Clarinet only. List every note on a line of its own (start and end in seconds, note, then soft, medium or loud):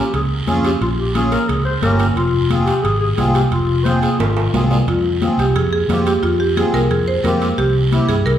0.00 0.14 G4 medium
0.15 0.22 G#4 medium
0.65 0.73 G4 medium
0.82 0.90 F4 medium
0.98 1.14 G4 medium
1.14 1.31 G#4 medium
1.31 1.50 A#4 medium
1.49 1.65 G#4 medium
1.65 1.81 C5 medium
1.82 2.06 A#4 medium
2.15 2.63 F4 loud
2.65 2.82 G4 medium
2.83 2.99 G#4 medium
3.01 3.08 G#4 medium
3.17 3.25 G#4 medium
3.34 3.42 G4 medium
3.51 3.86 F4 medium
3.85 4.01 C5 medium
4.02 4.20 G#4 medium
4.19 4.70 F4 medium